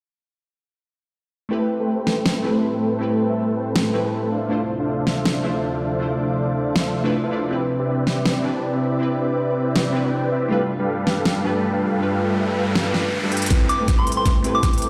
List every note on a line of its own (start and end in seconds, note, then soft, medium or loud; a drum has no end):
1.49 4.29 A2 medium
1.49 4.29 G3 medium
1.49 2.41 A3 medium
1.49 1.61 A3 medium
1.49 2.42 C4 medium
1.49 4.29 C4 medium
1.49 2.42 E4 medium
1.49 2.43 G4 medium
1.49 4.29 A4 medium
1.49 1.61 A4 medium
1.49 1.61 B4 medium
1.49 2.43 B4 medium
1.49 1.61 C5 medium
1.49 1.61 G5 loud
1.80 2.05 A3 medium
1.80 2.05 A4 medium
1.80 2.05 B4 medium
1.80 2.05 C5 medium
1.80 2.05 G5 medium
2.07 2.24 A3 medium
2.07 2.24 A4 medium
2.07 2.24 B4 medium
2.07 2.24 C5 medium
2.07 2.24 G5 medium
2.07 snare medium
2.26 2.42 A3 medium
2.26 2.42 A4 medium
2.26 2.42 B4 medium
2.26 2.42 C5 medium
2.26 2.42 G5 medium
2.26 snare loud
2.42 2.97 A3 medium
2.42 2.71 A3 medium
2.42 2.98 C4 medium
2.42 2.99 E4 medium
2.42 2.99 G4 medium
2.42 2.71 A4 medium
2.42 2.71 B4 medium
2.42 2.71 C5 medium
2.42 2.71 B5 loud
2.46 3.00 B4 medium
2.73 2.90 A3 medium
2.73 2.90 A4 medium
2.73 2.90 B4 medium
2.73 2.90 C5 medium
2.73 2.90 G5 medium
2.92 3.27 A3 medium
2.92 3.27 A4 medium
2.92 3.27 B4 medium
2.92 3.27 C5 medium
2.92 3.27 G5 medium
2.99 3.91 A3 medium
2.99 3.92 C4 medium
2.99 3.92 E4 medium
2.99 3.93 G4 medium
2.99 3.93 B4 medium
3.30 3.55 A3 medium
3.30 3.55 A4 medium
3.30 3.55 B4 medium
3.30 3.55 C5 medium
3.30 3.55 E5 medium
3.57 3.74 A3 medium
3.57 3.74 A4 medium
3.57 3.74 B4 medium
3.57 3.74 C5 medium
3.57 3.74 G5 medium
3.76 4.02 A3 medium
3.76 4.02 A4 medium
3.76 4.02 B4 medium
3.76 4.02 C5 medium
3.76 4.02 G5 medium
3.76 snare loud
3.93 4.30 A3 medium
3.93 4.31 C4 medium
3.93 4.31 E4 medium
3.93 4.31 G4 medium
3.93 4.31 B4 medium
4.05 4.30 A3 medium
4.05 4.30 A4 medium
4.05 4.30 B4 medium
4.05 4.30 C5 medium
4.05 4.30 A5 medium
4.32 7.47 D2 medium
4.32 10.46 C3 medium
4.32 7.47 F3 medium
4.32 4.40 D4 medium
4.32 4.40 A4 medium
4.32 4.40 C5 medium
4.32 7.47 D5 medium
4.32 4.40 E5 medium
4.32 4.40 F5 medium
4.42 4.49 D4 medium
4.42 4.49 A4 medium
4.42 4.49 C5 medium
4.42 4.49 E5 medium
4.42 4.49 F5 medium
4.48 5.41 A3 medium
4.48 5.42 D4 medium
4.48 4.61 D4 loud
4.48 5.42 E4 medium
4.48 5.43 F4 medium
4.48 4.61 A4 medium
4.48 4.61 C5 medium
4.48 4.61 E5 medium
4.48 4.61 F5 loud
4.52 5.43 C5 medium
4.80 5.05 D4 medium
4.80 5.05 A4 medium
4.80 5.05 C5 medium
4.80 5.05 E5 medium
4.80 5.05 F5 medium
5.07 5.24 D4 medium
5.07 5.24 A4 medium
5.07 5.24 C5 medium
5.07 5.24 E5 medium
5.07 5.24 F5 medium
5.07 snare medium
5.25 5.42 D4 medium
5.25 5.42 A4 medium
5.25 5.42 C5 medium
5.25 5.42 E5 medium
5.25 5.42 F5 medium
5.25 snare loud
5.42 5.98 A3 medium
5.42 5.98 D4 medium
5.42 5.71 D4 medium
5.42 5.99 E4 medium
5.42 5.99 F4 medium
5.42 5.71 A4 medium
5.42 5.71 C5 medium
5.42 6.00 C5 medium
5.42 5.71 E5 medium
5.42 5.71 F5 loud
5.73 5.90 D4 medium
5.73 5.90 A4 medium
5.73 5.90 C5 medium
5.73 5.90 E5 medium
5.73 5.90 F5 medium
5.92 6.27 D4 medium
5.92 6.27 A4 medium
5.92 6.27 C5 medium
5.92 6.27 E5 medium
5.92 6.27 F5 medium
5.99 6.91 A3 medium
5.99 6.92 D4 medium
5.99 6.92 E4 medium
5.99 6.93 F4 medium
5.99 6.93 C5 medium
6.30 6.55 D4 medium
6.30 6.55 A4 medium
6.30 6.55 C5 medium
6.30 6.55 E5 medium
6.30 6.55 F5 medium
6.57 6.74 D4 medium
6.57 6.74 A4 medium
6.57 6.74 C5 medium
6.57 6.74 E5 medium
6.57 6.74 F5 medium
6.76 7.02 D4 medium
6.76 7.02 A4 medium
6.76 7.02 C5 medium
6.76 7.02 E5 medium
6.76 7.02 F5 medium
6.76 snare loud
7.04 7.29 A3 medium
7.04 7.30 D4 medium
7.04 7.30 E4 medium
7.04 7.30 F4 medium
7.04 7.30 B4 loud
7.23 7.30 D4 medium
7.23 7.30 A4 medium
7.23 7.30 C5 medium
7.23 7.30 E5 medium
7.23 7.30 F5 medium
7.31 7.48 A3 medium
7.31 7.48 D4 medium
7.31 7.42 D4 medium
7.31 7.49 E4 medium
7.31 7.49 F4 medium
7.31 7.42 A4 medium
7.31 7.42 C5 medium
7.31 7.49 D5 medium
7.31 7.42 E5 medium
7.31 7.42 F5 loud
7.49 8.41 C4 medium
7.49 7.61 C4 medium
7.49 8.42 D4 medium
7.49 8.42 E4 medium
7.49 10.48 E4 medium
7.49 7.61 G4 medium
7.49 8.43 G4 medium
7.49 7.61 B4 medium
7.49 10.48 B4 medium
7.49 7.61 D5 medium
7.49 10.48 D5 medium
7.49 7.61 E5 loud
7.53 8.43 B4 medium
7.80 8.05 C4 medium
7.80 8.05 G4 medium
7.80 8.05 B4 medium
7.80 8.05 D5 medium
7.80 8.05 E5 medium
8.07 8.23 C4 medium
8.07 8.23 G4 medium
8.07 8.23 B4 medium
8.07 8.23 D5 medium
8.07 8.23 E5 loud
8.07 snare medium
8.25 8.42 C4 medium
8.25 8.42 G4 medium
8.25 8.42 B4 medium
8.25 8.42 D5 medium
8.25 8.42 E5 loud
8.25 snare loud
8.42 8.98 C4 medium
8.42 8.71 C4 medium
8.42 8.98 D4 medium
8.42 8.99 E4 medium
8.42 8.71 G4 medium
8.42 8.99 G4 medium
8.42 8.71 B4 medium
8.42 9.00 B4 medium
8.42 8.71 D5 medium
8.42 8.71 A5 loud
8.73 8.90 C4 medium
8.73 8.90 G4 medium
8.73 8.90 B4 medium
8.73 8.90 D5 medium
8.73 8.90 E5 medium
8.92 9.27 C4 medium
8.92 9.27 G4 medium
8.92 9.27 B4 medium
8.92 9.27 D5 medium
8.92 9.27 E5 medium
8.99 9.91 C4 medium
8.99 9.92 D4 medium
8.99 9.92 E4 medium
8.99 9.93 G4 medium
9.03 9.93 B4 medium
9.30 9.55 C4 medium
9.30 9.55 G4 medium
9.30 9.55 B4 medium
9.30 9.55 D5 medium
9.30 9.55 E5 medium
9.57 9.74 C4 medium
9.57 9.74 G4 medium
9.57 9.74 B4 medium
9.57 9.74 D5 medium
9.57 9.74 E5 medium
9.76 10.02 C4 medium
9.76 10.02 G4 medium
9.76 10.02 B4 medium
9.76 10.02 D5 medium
9.76 10.02 E5 medium
9.76 snare loud
9.92 10.48 C4 medium
9.92 10.48 D4 medium
9.92 10.49 E4 medium
9.92 10.49 G4 medium
9.92 10.50 B4 medium
10.05 10.30 C4 medium
10.05 10.30 G4 medium
10.05 10.30 B4 medium
10.05 10.30 D5 medium
10.05 10.30 G5 medium
10.32 10.40 C4 medium
10.32 10.40 G4 medium
10.32 10.40 B4 medium
10.32 10.40 D5 medium
10.32 10.40 E5 loud
10.42 10.49 C4 medium
10.42 10.49 G4 medium
10.42 10.49 B4 medium
10.42 10.49 D5 medium
10.42 10.49 E5 loud
10.48 13.48 G2 medium
10.48 13.47 G3 medium
10.48 10.61 G3 loud
10.48 11.41 A3 medium
10.48 11.42 D4 medium
10.48 11.42 F4 medium
10.48 13.48 F4 medium
10.48 10.61 G4 medium
10.48 11.43 G4 medium
10.48 10.61 A4 medium
10.48 13.48 B4 medium
10.48 10.61 B4 medium
10.48 11.43 B4 medium
10.48 10.61 F5 loud
10.48 riser medium
10.80 11.05 G3 medium
10.80 11.05 G4 medium
10.80 11.05 A4 medium
10.80 11.05 B4 medium
10.80 11.05 F5 medium
11.07 11.24 G3 medium
11.07 11.24 G4 medium
11.07 11.24 A4 medium
11.07 11.23 B4 medium
11.07 11.23 F5 medium
11.07 snare medium
11.26 11.42 G3 medium
11.26 11.42 G4 medium
11.26 11.42 A4 medium
11.26 11.42 B4 medium
11.26 11.42 F5 loud
11.26 snare loud
11.42 11.71 G3 medium
11.42 11.98 A3 medium
11.42 11.98 D4 medium
11.42 11.99 F4 medium
11.42 11.71 G4 medium
11.42 11.99 G4 medium
11.42 11.71 A4 medium
11.42 11.71 B4 medium
11.42 12.00 B4 medium
11.42 11.71 A5 loud
11.73 11.90 G3 medium
11.73 11.90 G4 medium
11.73 11.90 A4 medium
11.73 11.90 B4 medium
11.73 11.90 F5 medium
11.92 12.27 G3 medium
11.92 12.27 G4 medium
11.92 12.27 A4 medium
11.92 12.27 B4 medium
11.92 12.27 F5 medium
11.99 12.91 A3 medium
11.99 12.92 D4 medium
11.99 12.92 F4 medium
11.99 12.93 G4 medium
11.99 12.93 B4 medium
12.30 12.55 G3 medium
12.30 12.55 G4 medium
12.30 12.55 A4 medium
12.30 12.55 B4 medium
12.30 12.55 E5 medium
12.57 12.73 G3 medium
12.57 12.74 G4 medium
12.57 12.74 A4 medium
12.57 12.74 B4 medium
12.57 12.73 F5 medium
12.75 13.02 G3 medium
12.75 13.02 G4 medium
12.75 13.02 A4 medium
12.75 13.02 B4 medium
12.75 13.02 F5 medium
12.75 snare loud
12.92 13.48 A3 medium
12.92 13.48 D4 medium
12.92 13.49 F4 medium
12.92 13.49 G4 medium
12.92 13.50 B4 medium
12.92 snare medium
13.23 13.30 G3 medium
13.23 13.30 G4 medium
13.23 13.30 A4 medium
13.23 13.30 B4 medium
13.23 13.30 E5 medium
13.32 13.42 G3 loud
13.32 13.42 G4 medium
13.32 13.42 A4 medium
13.32 13.42 B4 medium
13.32 13.42 G5 loud
13.32 closed hi-hat soft
13.37 closed hi-hat medium
13.42 closed hi-hat medium
13.46 14.41 A3 medium
13.46 14.42 C4 medium
13.46 closed hi-hat medium
13.50 14.89 A2 medium
13.50 14.89 G3 medium
13.50 13.61 A3 loud
13.50 14.89 C4 medium
13.50 14.42 E4 medium
13.50 14.43 G4 medium
13.50 13.61 A4 medium
13.50 14.89 A4 medium
13.50 13.61 B4 medium
13.50 14.43 B4 medium
13.50 13.61 C5 medium
13.50 kick medium
13.50 snare soft
13.50 closed hi-hat medium
13.69 13.81 D6 medium
13.69 closed hi-hat medium
13.80 14.05 A3 medium
13.80 14.05 A4 medium
13.80 14.05 B4 medium
13.80 14.05 C5 medium
13.80 14.05 G5 medium
13.88 kick medium
13.88 snare soft
13.88 closed hi-hat medium
13.99 14.09 C6 medium
14.07 14.24 A3 medium
14.07 14.24 A4 medium
14.07 14.24 B4 medium
14.07 14.24 C5 medium
14.07 14.24 G5 medium
14.07 closed hi-hat soft
14.12 closed hi-hat medium
14.17 14.27 C6 medium
14.26 14.42 A3 medium
14.26 14.42 A4 medium
14.26 kick medium
14.26 snare soft
14.26 closed hi-hat medium
14.42 14.89 A3 medium
14.42 14.71 A3 medium
14.42 14.89 C4 medium
14.42 14.89 E4 medium
14.42 14.89 G4 medium
14.42 14.71 A4 medium
14.42 14.71 B4 medium
14.42 14.89 B4 medium
14.42 14.71 C5 medium
14.42 14.71 B5 loud
14.42 closed hi-hat medium
14.55 14.65 D6 medium
14.63 kick medium
14.63 snare soft
14.63 closed hi-hat medium
14.73 14.89 A3 medium
14.73 14.89 A4 medium
14.73 14.89 B4 medium
14.73 14.89 C5 medium
14.73 14.89 G5 medium
14.73 closed hi-hat soft
14.78 closed hi-hat medium
14.82 closed hi-hat medium